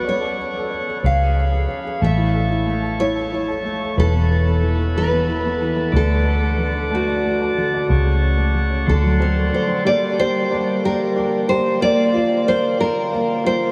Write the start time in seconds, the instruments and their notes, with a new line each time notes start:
Already playing: tonewheel organ F#5 C#6
0.04 fingered electric bass C#2, upright piano C#4, tonewheel organ A4 C#5
0.09 nylon-string guitar C#5
0.21 upright piano A4
0.38 upright piano C#4
0.54 upright piano A4
0.70 upright piano C#4
0.87 upright piano A4
1.03 fingered electric bass C#2, upright piano C#4, tonewheel organ G#4 F5 B5, nylon-string guitar F5
1.19 upright piano G#4
1.35 upright piano C#4
1.52 upright piano G#4
1.68 upright piano C#4
1.85 upright piano G#4
2.01 fingered electric bass A1, upright piano A3, tonewheel organ E5 A5 C#6, nylon-string guitar E5
2.17 upright piano E4
2.34 upright piano A4
2.50 upright piano E4
2.66 upright piano A3
2.82 upright piano A4
2.99 upright piano E4, nylon-string guitar C#5
3.15 upright piano A4
3.32 upright piano E4
3.48 upright piano A4
3.64 upright piano A3
3.81 upright piano A4
3.97 fingered electric bass E1, upright piano E3, nylon-string guitar A4, tonewheel organ B4 B5
4.14 upright piano B3
4.30 upright piano E3
4.46 upright piano B3
4.62 upright piano E3
4.78 upright piano B3
4.95 upright piano E3, nylon-string guitar B4
5.11 upright piano B3
5.28 upright piano E3
5.43 upright piano B3
5.60 upright piano E3
5.76 upright piano B3
5.92 fingered electric bass D2, upright piano D3, tonewheel organ D5 F#5 D6
5.96 nylon-string guitar A4
6.09 upright piano A3
6.25 upright piano D4
6.42 upright piano A3
6.58 upright piano D3
6.75 upright piano D4
6.91 upright piano A3, nylon-string guitar F#4
7.07 upright piano D4
7.23 upright piano A3
7.41 upright piano D4
7.57 upright piano D3
7.74 upright piano D4
7.89 fingered electric bass C#2, upright piano C#3, tonewheel organ C#5 C#6
8.06 upright piano A3
8.21 upright piano C#4
8.37 upright piano A3
8.54 upright piano C#3
8.70 upright piano C#4
8.86 fingered electric bass D2, upright piano D3, nylon-string guitar A4, tonewheel organ D5 C6
9.03 upright piano F#3
9.20 upright piano C4, nylon-string guitar A#4
9.36 upright piano A3
9.52 upright piano D3, nylon-string guitar C5
9.68 upright piano C4
9.85 tonewheel organ D3 G3 A#3 G4, upright piano G3, nylon-string guitar D5
10.18 upright piano G4, nylon-string guitar C5
10.51 upright piano D4
10.84 upright piano G4, nylon-string guitar A#4
11.16 upright piano D4
11.48 upright piano G4, nylon-string guitar C5
11.81 upright piano A#3, tonewheel organ C4 F4, nylon-string guitar D5
12.14 upright piano F4
12.47 upright piano A#3, nylon-string guitar C5
12.78 upright piano F4, nylon-string guitar A#4
13.12 upright piano A#3
13.44 upright piano F4, nylon-string guitar C5